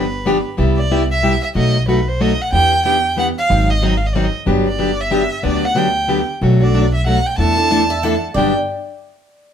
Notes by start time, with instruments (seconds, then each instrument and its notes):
Already playing: upright bass G1, violin B4
0.25 steel-string acoustic guitar D3 F3 B3 D4 G4
0.57 upright bass C2, steel-string acoustic guitar C3 G3 B3 E4 G4
0.78 violin D5
0.90 steel-string acoustic guitar C3 G3 B3 E4 G4
1.11 violin E5
1.23 steel-string acoustic guitar C3 G3 B3 E4 G4
1.43 violin E5
1.55 upright bass B1, steel-string acoustic guitar B2 F#3 A3 D#4 F#4, violin D#5
1.88 steel-string acoustic guitar B2 F#3 A3 D#4 F#4, violin B4
2.03 violin B4
2.08 violin C5
2.20 steel-string acoustic guitar B2 F#3 A3 D#4 F#4, violin D#5
2.42 violin F#5
2.52 upright bass E2, steel-string acoustic guitar E3 B3 D4 G4, violin G5
2.85 steel-string acoustic guitar E3 B3 D4 G4, violin G5
3.17 steel-string acoustic guitar E3 B3 D4 G4, violin F#5
3.38 violin F5
3.49 upright bass G#1, steel-string acoustic guitar D#3 F#3 C4 D#4 G#4
3.70 violin D#5
3.82 steel-string acoustic guitar D#3 F#3 C4 D#4 G#4
3.97 violin F5
4.06 violin D#5
4.13 steel-string acoustic guitar D#3 F#3 C4 D#4 G#4, violin D5
4.24 violin D#5
4.46 upright bass G1, steel-string acoustic guitar D3 F#3 B3 D4 G4
4.68 violin D5
4.78 steel-string acoustic guitar D3 F#3 B3 D4 G4
5.01 violin E5
5.10 steel-string acoustic guitar D3 F#3 B3 D4 G4
5.43 upright bass D2, steel-string acoustic guitar D3 F#3 B3 D4 G4, violin D5
5.65 violin F#5
5.75 steel-string acoustic guitar D3 F#3 B3 D4 G4, violin G5
6.08 steel-string acoustic guitar D3 F#3 B3 D4 G4
6.41 upright bass B1, steel-string acoustic guitar B2 F#3 A3 D4 F#4
6.61 steel-string acoustic guitar A3 D4 F#4, violin D5
6.74 steel-string acoustic guitar B2 F#3 A3 D4 F#4
6.94 violin E5
7.06 steel-string acoustic guitar B2 F#3 A3 D4 F#4, violin F#5
7.26 violin G5
7.38 upright bass E2, steel-string acoustic guitar E3 A3 D4 E4 A4, violin A5
7.57 steel-string acoustic guitar D4 E4 A4
7.71 steel-string acoustic guitar E3 A3 D4 E4 A4 D5
7.90 steel-string acoustic guitar E5
8.03 steel-string acoustic guitar E3 A3 D4 E4 A4 F#5
8.34 upright bass G1, steel-string acoustic guitar G2 D3 F#3 B3 D4 D5, violin G5
8.38 steel-string acoustic guitar G4